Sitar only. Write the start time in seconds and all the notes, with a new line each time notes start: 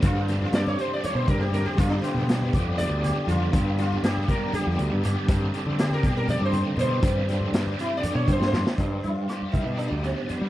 0.04 F4
0.42 F4
0.55 D5
0.68 C#5
0.80 C5
0.93 D5
1.05 C#5
1.16 C5
1.29 A#4
1.41 G4
1.53 A#4
1.66 G4
1.77 F4
1.89 D4
2.02 B3
2.78 D5
3.04 G4
3.28 F4
3.79 F4
4.04 G4
4.29 A#4
4.55 G4
5.79 G4
5.93 A#4
6.05 G4
6.17 A#4
6.30 D5
6.45 C5
6.80 C5
7.80 E4
7.97 D5
8.15 C#5
8.32 C5
8.47 C5
8.78 D4
9.03 F4
9.52 D#4
9.77 D4
10.04 C4
10.30 B3